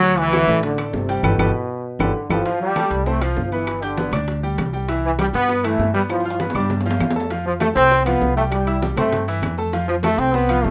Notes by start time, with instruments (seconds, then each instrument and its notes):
Already playing: upright bass D2, trombone section F#3
0.03 grand piano F#3 F#4 F#5, high bongo, high conga, high timbale
0.18 trombone section E3, high conga, high timbale
0.33 grand piano F#3 F#4 F#5, high bongo, high conga, high timbale, low timbale, claves
0.47 upright bass A1, grand piano A3 A4 D5
0.63 trombone section D3, high bongo, high conga, high timbale
0.78 grand piano A3 A4 D5, high conga, high timbale, claves
0.87 trombone section D3
0.93 upright bass G1, trombone section C3, high bongo, low bongo, high conga, low timbale
1.09 grand piano G3 G4 G5, high conga, high timbale
1.23 upright bass G1, trombone section B2, grand piano G4 A4 B4, low bongo, high conga, high timbale, claves
1.38 upright bass G1, grand piano G4 A4 B4, low bongo, high conga, high timbale, claves
1.99 upright bass G1, trombone section D3, grand piano G4 A4 B4, low bongo, high conga, high timbale, claves
2.30 upright bass G1, trombone section F3, grand piano G4 A4 B4, low bongo, high conga, high timbale, claves
2.45 grand piano F3 F4 F5, high bongo, high conga, high timbale
2.61 trombone section G3, high bongo, high conga
2.76 grand piano A3 A4 A5, high bongo, high conga, high timbale, low timbale, claves
2.91 upright bass C2, high bongo, high conga, high timbale
3.06 trombone section A3, grand piano C4 C5 C6, high bongo, high conga
3.22 grand piano F3 F4 F5, trombone section F3, high conga, high timbale, claves
3.36 upright bass G1, high bongo, low bongo, high conga, low timbale
3.45 trombone section F3
3.52 trombone section E3, grand piano B3 B4 B5, high bongo, high conga
3.67 high bongo, high conga, high timbale, claves
3.82 trombone section D3, grand piano G4 G5 G6, high bongo, high conga, high timbale
3.97 grand piano B3 B4 B5, high bongo, high conga, low timbale
4.12 upright bass D2, grand piano D4 D5 D6, high bongo, high conga, low conga, high timbale, claves
4.28 high bongo, high conga, high timbale
4.43 grand piano G3 G4 G5, high conga
4.58 upright bass C2, high bongo, low bongo, high conga, high timbale, low timbale, claves
4.73 grand piano G3 G4 G5, high bongo, high conga
4.88 grand piano E3 E4 E5, high bongo, high conga, high timbale
5.04 trombone section E3, high bongo, high conga
5.19 grand piano G3 G4 G5, trombone section G3, high bongo, high conga, high timbale, low timbale, claves
5.33 upright bass G2, trombone section B3, high bongo, high conga, high timbale
5.49 grand piano B3 B4 B5, high bongo, high conga
5.64 grand piano E3 E4 E5, trombone section A3, high conga, high timbale, claves
5.79 upright bass G2, high bongo, low bongo, high conga, low timbale
5.94 trombone section G3, grand piano B3 B4 B5, high bongo, high conga
6.10 trombone section F3, high bongo, high conga, high timbale, claves
6.20 high timbale
6.25 grand piano F4 F5 F6, high bongo, high conga
6.30 high timbale
6.40 grand piano B3 B4 B5, high bongo, high conga, high timbale
6.50 low timbale
6.54 upright bass G2, trombone section G3, grand piano D4 D5 D6, high conga, low conga, claves
6.60 low timbale
6.70 high bongo, high conga, low conga, low timbale
6.81 low timbale
6.85 grand piano F3 F4 F5, high conga
6.91 low timbale
7.00 upright bass F2, high bongo, low bongo, high conga, low timbale, claves
7.11 low timbale
7.16 grand piano A3 A4 A5, high bongo, high conga
7.20 low timbale
7.30 grand piano F3 F4 F5, high bongo, high conga, high timbale
7.46 trombone section F3, high bongo, high conga
7.60 trombone section A3, grand piano A3 A4 A5, high bongo, high conga, high timbale, low timbale, claves
7.75 upright bass C2, trombone section C4, high bongo, high conga, high timbale
7.91 grand piano C4 C5 C6, high bongo, high conga
8.05 grand piano F3 F4 F5, trombone section B3, high conga, high timbale, claves
8.21 upright bass C2, high bongo, low bongo, high conga, low timbale
8.36 grand piano G3 G4 G5, trombone section A3, high bongo, high conga
8.52 trombone section G3, high bongo, high conga, high timbale, claves
8.67 grand piano E4 E5 E6, high bongo, high conga, high timbale
8.82 grand piano G3 G4 G5, high bongo, high conga, low timbale
8.96 upright bass G2, trombone section A3, grand piano C4 C5 C6, high bongo, high conga, low conga, high timbale, claves
9.13 high bongo, high conga, low conga, high timbale
9.28 grand piano E3 E4 E5, high conga
9.42 upright bass F2, high bongo, low bongo, high conga, high timbale, low timbale, claves
9.58 grand piano A3 A4 A5, high bongo, high conga
9.73 grand piano F3 F4 F5, high bongo, high conga, high timbale
9.88 trombone section F3, high bongo, high conga
10.03 grand piano A3 A4 A5, trombone section A3, high bongo, high conga, high timbale, low timbale, claves
10.18 upright bass C2, trombone section C4, high bongo, high conga, high timbale
10.34 trombone section B3, grand piano C4 C5 C6, high bongo, high conga
10.49 grand piano F3 F4 F5, high conga, high timbale, claves
10.64 upright bass G1, trombone section A3, high bongo, low bongo, high conga, low timbale